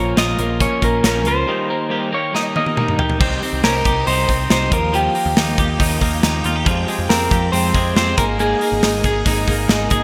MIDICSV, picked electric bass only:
0, 0, Header, 1, 2, 480
1, 0, Start_track
1, 0, Tempo, 432900
1, 1629, Time_signature, 4, 2, 24, 8
1, 11127, End_track
2, 0, Start_track
2, 0, Title_t, "Picked electric bass"
2, 0, Program_c, 0, 34
2, 0, Note_on_c, 0, 34, 93
2, 146, Note_off_c, 0, 34, 0
2, 182, Note_on_c, 0, 34, 84
2, 381, Note_off_c, 0, 34, 0
2, 430, Note_on_c, 0, 34, 86
2, 724, Note_off_c, 0, 34, 0
2, 912, Note_on_c, 0, 34, 89
2, 1107, Note_off_c, 0, 34, 0
2, 1148, Note_on_c, 0, 34, 107
2, 1394, Note_off_c, 0, 34, 0
2, 1394, Note_on_c, 0, 37, 83
2, 1589, Note_off_c, 0, 37, 0
2, 3553, Note_on_c, 0, 36, 106
2, 3748, Note_off_c, 0, 36, 0
2, 3912, Note_on_c, 0, 36, 90
2, 4010, Note_off_c, 0, 36, 0
2, 4031, Note_on_c, 0, 36, 101
2, 4228, Note_off_c, 0, 36, 0
2, 4273, Note_on_c, 0, 36, 102
2, 4469, Note_off_c, 0, 36, 0
2, 4511, Note_on_c, 0, 36, 100
2, 4708, Note_off_c, 0, 36, 0
2, 4754, Note_on_c, 0, 36, 107
2, 4949, Note_off_c, 0, 36, 0
2, 4993, Note_on_c, 0, 36, 99
2, 5189, Note_off_c, 0, 36, 0
2, 5228, Note_on_c, 0, 39, 96
2, 5622, Note_off_c, 0, 39, 0
2, 5830, Note_on_c, 0, 39, 96
2, 5928, Note_off_c, 0, 39, 0
2, 5948, Note_on_c, 0, 39, 97
2, 6145, Note_off_c, 0, 39, 0
2, 6190, Note_on_c, 0, 39, 97
2, 6386, Note_off_c, 0, 39, 0
2, 6430, Note_on_c, 0, 39, 107
2, 6627, Note_off_c, 0, 39, 0
2, 6668, Note_on_c, 0, 39, 96
2, 6865, Note_off_c, 0, 39, 0
2, 6913, Note_on_c, 0, 39, 104
2, 7108, Note_off_c, 0, 39, 0
2, 7146, Note_on_c, 0, 39, 91
2, 7344, Note_off_c, 0, 39, 0
2, 7388, Note_on_c, 0, 41, 109
2, 7585, Note_off_c, 0, 41, 0
2, 7748, Note_on_c, 0, 41, 98
2, 7847, Note_off_c, 0, 41, 0
2, 7868, Note_on_c, 0, 41, 100
2, 8065, Note_off_c, 0, 41, 0
2, 8107, Note_on_c, 0, 41, 108
2, 8304, Note_off_c, 0, 41, 0
2, 8349, Note_on_c, 0, 41, 93
2, 8545, Note_off_c, 0, 41, 0
2, 8586, Note_on_c, 0, 41, 92
2, 8784, Note_off_c, 0, 41, 0
2, 8823, Note_on_c, 0, 41, 108
2, 9022, Note_off_c, 0, 41, 0
2, 9068, Note_on_c, 0, 32, 93
2, 9461, Note_off_c, 0, 32, 0
2, 9668, Note_on_c, 0, 32, 92
2, 9766, Note_off_c, 0, 32, 0
2, 9786, Note_on_c, 0, 32, 90
2, 9983, Note_off_c, 0, 32, 0
2, 10026, Note_on_c, 0, 32, 93
2, 10223, Note_off_c, 0, 32, 0
2, 10266, Note_on_c, 0, 32, 104
2, 10463, Note_off_c, 0, 32, 0
2, 10507, Note_on_c, 0, 32, 96
2, 10704, Note_off_c, 0, 32, 0
2, 10742, Note_on_c, 0, 32, 117
2, 10941, Note_off_c, 0, 32, 0
2, 10988, Note_on_c, 0, 32, 96
2, 11127, Note_off_c, 0, 32, 0
2, 11127, End_track
0, 0, End_of_file